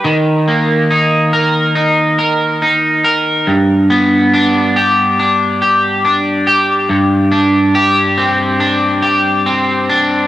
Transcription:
Already playing: D4 G4 B4
0.04 D#3
0.48 A#3
0.91 D#4
1.33 A#4
1.75 D#4
2.19 A#4
2.62 D#4
3.04 A#4
3.47 G2
3.90 B3
4.34 D4
4.76 G4
5.19 D4
5.62 G4
6.05 D4
6.47 G4
6.89 G2
7.32 D4
7.75 G4
8.17 C4
8.60 D4
9.02 G4
9.46 C4
9.89 D4

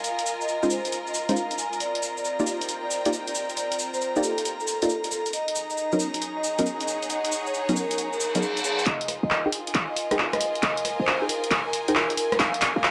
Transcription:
Already playing: F4 A#4 D#5 G#5 A#5
0.04 F5, closed hi-hat, shaker
0.19 closed hi-hat, shaker
0.26 shaker
0.41 D#5, shaker
0.48 shaker
0.63 G#3 C#4 D#4 F4 C5, shaker
0.70 C5, shaker
0.85 closed hi-hat, shaker
0.92 closed hi-hat, shaker
1.07 D#5, shaker
1.14 shaker
1.29 G#3 C#4 D#4 F4 C5 F5, closed hi-hat, shaker
1.36 shaker
1.51 closed hi-hat, shaker
1.58 G#5, shaker
1.73 closed hi-hat, shaker
1.80 C4 D5, closed hi-hat, shaker
1.95 closed hi-hat
2.03 shaker
2.17 D5, shaker
2.25 shaker
2.31 G5
2.39 A#3 D#4 F4 G4 D5, shaker
2.47 shaker
2.61 closed hi-hat, shaker
2.69 closed hi-hat, shaker
2.84 D5
2.91 shaker
3.05 A#3 D#4 F4 G4 D5, closed hi-hat, shaker
3.13 shaker
3.28 D5, closed hi-hat, shaker
3.35 shaker
3.50 closed hi-hat, shaker
3.57 D5, closed hi-hat, shaker
3.72 closed hi-hat, shaker
3.79 shaker
3.94 C5, shaker
4.01 shaker
4.16 A#3 D#4 F4 G4 D5, shaker
4.23 A4, shaker
4.38 closed hi-hat, shaker
4.45 closed hi-hat, shaker
4.60 A4, shaker
4.67 shaker
4.82 A#3 D#4 F4 G4 A4 D5, closed hi-hat, shaker
4.89 shaker
5.04 closed hi-hat, shaker
5.11 A4, shaker
5.26 closed hi-hat, shaker
5.33 D#4 D#5, closed hi-hat, shaker
5.48 closed hi-hat
5.55 G#4, shaker
5.70 D#5, shaker
5.77 shaker
5.92 F#3 B3 C#4 D#4 A#4, shaker
6.00 shaker
6.04 C#5
6.14 closed hi-hat, shaker
6.22 closed hi-hat, shaker
6.37 D#5
6.44 shaker
6.49 F#5
6.59 F#3 B3 C#4 D#4 A#4, closed hi-hat, shaker
6.66 shaker
6.81 D#5, closed hi-hat, shaker
6.88 shaker
7.03 closed hi-hat, shaker
7.10 D#5, closed hi-hat, shaker
7.25 closed hi-hat, shaker
7.32 shaker
7.47 C#5, shaker
7.54 shaker
7.69 F#3 B3 C#4 D#4 A#4, closed hi-hat, shaker
7.76 A#4, shaker
7.91 closed hi-hat, shaker
7.98 closed hi-hat, reverse cymbal, shaker
8.13 A#4, shaker
8.20 shaker
8.35 F#3 B3 C#4 D#4 G#4 A#4, closed hi-hat, shaker
8.42 shaker
8.57 closed hi-hat, shaker
8.64 G#4, shaker
8.79 closed hi-hat, shaker
8.86 F1 F4 D#5 G#5, clap, closed hi-hat
9.01 D#5, closed hi-hat
9.08 cross-stick, open hi-hat
9.23 F1 A#4 D#5
9.30 clap
9.46 D#4 G#4 A#4 C5 G5
9.52 open hi-hat
9.66 G#5, closed hi-hat
9.74 G#1, clap, closed hi-hat
9.89 D#5
9.96 open hi-hat
10.11 D#4 G#4 A#4 C5 G5, cross-stick, closed hi-hat
10.19 clap
10.33 D#5, cross-stick, closed hi-hat
10.41 open hi-hat
10.55 closed hi-hat
10.63 F1 D#5, clap, closed hi-hat
10.77 closed hi-hat
10.85 cross-stick, open hi-hat
11.00 F1 C5
11.07 clap
11.22 D#4 G#4 A#4 C5 G5
11.29 A#4, open hi-hat
11.44 closed hi-hat
11.51 F1, clap, closed hi-hat
11.66 A#4
11.73 open hi-hat
11.88 D#4 G#4 A#4 C5 G5, closed hi-hat
11.95 clap
12.10 closed hi-hat
12.17 A#4, open hi-hat
12.32 cross-stick, closed hi-hat
12.39 A#1 F5, clap, closed hi-hat
12.54 closed hi-hat
12.62 clap, open hi-hat
12.76 A#1 F5
12.84 clap

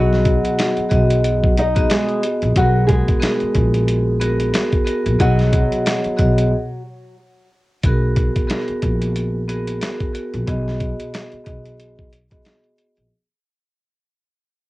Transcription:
Already playing: B1 F#3 B3 F#4 G#4 D#5
0.13 snare
0.25 kick, closed hi-hat
0.45 closed hi-hat
0.59 snare, closed hi-hat
0.77 muted upright bass stroke, closed hi-hat
0.89 B1 B3 F#4 G#4 D#5, kick, closed hi-hat
1.10 closed hi-hat
1.24 closed hi-hat
1.44 kick
1.57 D#4 D#5, closed hi-hat
1.75 B3 F#4 G#4 D#5, kick, closed hi-hat
1.90 G#3 G#4, snare, closed hi-hat
2.09 closed hi-hat
2.23 closed hi-hat
2.42 A#1, closed hi-hat
2.56 B1 F#3 B3 F#4 G#4 A#4, kick, closed hi-hat
2.87 G#3 G#4, kick, closed hi-hat
3.08 kick, closed hi-hat
3.20 B3 F#4 G#4 A#4, snare, closed hi-hat
3.40 muted upright bass stroke, closed hi-hat
3.55 A#1, kick, closed hi-hat
3.74 closed hi-hat
3.88 closed hi-hat
4.20 B3 F#4 G#4 A#4, closed hi-hat
4.40 closed hi-hat
4.53 B3 F#4 G#4 A#4, snare, closed hi-hat
4.72 kick, closed hi-hat
4.85 B3 F#4 G#4 A#4, closed hi-hat
5.06 A#1, closed hi-hat
5.19 B1 F#3 B3 F#4 G#4 D#5, kick, closed hi-hat
5.39 snare, closed hi-hat
5.53 kick, closed hi-hat
5.72 closed hi-hat
5.86 snare, closed hi-hat
6.04 muted upright bass stroke, closed hi-hat
6.16 B1 B3 F#4 G#4 D#5, kick, closed hi-hat
6.38 closed hi-hat
7.84 B1 B3 F#4 G#4 A#4, kick, closed hi-hat
8.16 kick, closed hi-hat
8.36 kick, closed hi-hat
8.47 B3 F#4 G#4 A#4, snare, closed hi-hat
8.68 muted upright bass stroke, closed hi-hat
8.82 A#1, kick, closed hi-hat
9.02 closed hi-hat
9.16 closed hi-hat
9.48 B3 F#4 G#4 A#4, closed hi-hat
9.67 closed hi-hat
9.81 B3 F#4 G#4 A#4, snare, closed hi-hat
10.00 kick, closed hi-hat
10.12 B3 F#4 G#4 A#4, closed hi-hat
10.34 A#1, closed hi-hat
10.47 B1 B3 F#4 G#4 D#5, kick, closed hi-hat
10.68 snare
10.80 kick, closed hi-hat
11.00 closed hi-hat
11.14 snare, closed hi-hat
11.32 muted upright bass stroke, closed hi-hat
11.44 B1 B3 F#4 G#4 D#5, kick, closed hi-hat
11.65 closed hi-hat
11.80 closed hi-hat
11.99 kick
12.13 closed hi-hat
12.30 B3 F#4 G#4 D#5, kick, closed hi-hat
12.45 snare, closed hi-hat
12.64 closed hi-hat
12.78 closed hi-hat
12.97 A#1, closed hi-hat

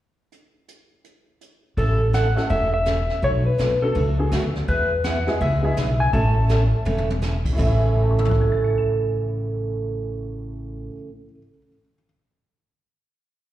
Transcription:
0.32 closed hi-hat
0.68 closed hi-hat
1.04 closed hi-hat
1.41 closed hi-hat
1.77 A1 C#3 E3 A3 C#4 A4, brush sweep, kick
2.13 C#3 E3 A3 C#4 A4 F#5, snare, hi-hat pedal
2.36 A3 C#4 E4 A4, snare
2.50 E1 C#3 E3 A3 C#4 A4 E5, brush sweep, kick
2.74 E5
2.86 C#3 E3 A3 C#4 A4, snare, hi-hat pedal
3.09 snare
3.22 B1 B2 F#3 A3 D4 F#4 C#5, brush sweep, kick
3.46 B4
3.58 B1 B2 F#3 A3 D4 F#4, snare, hi-hat pedal
3.82 B3 D4 F#4 A4
3.95 C#2 B2 F#3 A3 D4 F#4, brush sweep, kick
4.18 B3 D4 F#4 G#4
4.31 D2 B2 F#3 A3 D4 F#4, snare, hi-hat pedal
4.55 snare
4.68 E2 E3 G#3 B3 E4 G#4 B4, brush sweep, kick
5.04 E3 G#3 B3 E4 G#4 F#5, snare, hi-hat pedal
5.27 G#3 B3 E4 G#4, snare
5.41 C#2 E3 G#3 B3 E4 G#4 E5, brush sweep, kick
5.63 G#3 B3 E4 G#4
5.76 B1 E3 G#3 B3 E4 G#4, snare, hi-hat pedal
6.00 G#5
6.13 A1 C#3 E3 A3 C#4 E4 A4 A5, brush sweep, kick
6.49 C#3 E3 A3 C#4 A4, snare, hi-hat pedal
6.85 E1 C#3 E3 A3 C#4 A4, high tom
6.98 high tom
7.10 high tom
7.22 C#3 E3 A3 C#4 A4, snare, hi-hat pedal
7.45 kick, crash
7.53 A2 A3
7.57 A1 A2 C#3 E3 A3 C#4 A4, kick, crash
7.62 E4 E5
7.95 G#5
8.02 A5
8.11 C#6
8.18 E6, mid tom
8.25 floor tom
8.29 F#6, kick
8.41 G#6
8.52 A6
8.64 C#7
8.78 E7

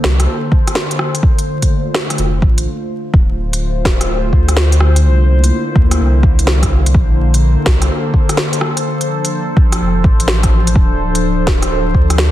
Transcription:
Already playing: D3 A#3 A4 C5
0.04 C2, snare
0.20 cross-stick, closed hi-hat
0.52 kick
0.67 cross-stick, closed hi-hat
0.75 snare
0.91 closed hi-hat
0.99 cross-stick
1.15 closed hi-hat
1.23 D3 A3 F4, kick
1.39 closed hi-hat
1.62 kick, closed hi-hat
1.95 cross-stick, snare
2.10 cross-stick, closed hi-hat
2.18 F1, closed hi-hat
2.42 A1, kick
2.58 closed hi-hat
3.13 D1 D3 A3 F4 C5, kick
3.53 closed hi-hat
3.85 kick, snare
4.01 cross-stick, closed hi-hat
4.33 D2, kick
4.48 cross-stick, closed hi-hat
4.57 snare
4.72 closed hi-hat
4.81 cross-stick
4.96 closed hi-hat
5.04 C2 A#3 E4
5.44 closed hi-hat
5.76 D2, kick
5.91 cross-stick, closed hi-hat
6.00 C2
6.23 kick
6.39 C2, closed hi-hat
6.47 snare
6.63 kick, cross-stick, closed hi-hat
6.86 closed hi-hat
6.95 A#1 A#3 A4 C5, kick
7.34 closed hi-hat
7.66 C2, kick, snare
7.82 cross-stick, closed hi-hat
8.14 kick
8.29 cross-stick, closed hi-hat
8.37 snare
8.53 closed hi-hat
8.61 cross-stick
8.77 closed hi-hat
8.85 F3 D4
9.01 closed hi-hat
9.25 closed hi-hat
9.57 kick
9.72 cross-stick, closed hi-hat
9.81 F1
10.04 A1, kick
10.20 closed hi-hat
10.28 snare
10.43 kick, cross-stick, closed hi-hat
10.67 closed hi-hat
10.76 D1, kick
11.15 closed hi-hat
11.47 kick, snare
11.62 cross-stick, closed hi-hat
11.95 D2, kick
12.10 cross-stick, closed hi-hat
12.18 snare

